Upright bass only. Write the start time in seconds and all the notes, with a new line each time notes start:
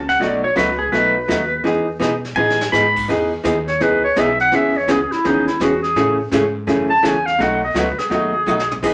Already playing: C#2
0.20 B1
0.56 C#2
0.93 B1
1.29 D#2
1.65 E2
2.01 B2
2.37 A2
2.73 G#2
3.09 E2
3.44 D#2
3.81 C#2
4.16 B1
4.53 E2
4.88 C#2
5.11 muted upright bass stroke
5.25 D#2
5.60 E2
5.95 A2
6.32 G#2
6.67 F#2
7.03 E2
7.39 B1
7.74 C#2
8.10 D#2
8.46 B1
8.83 E1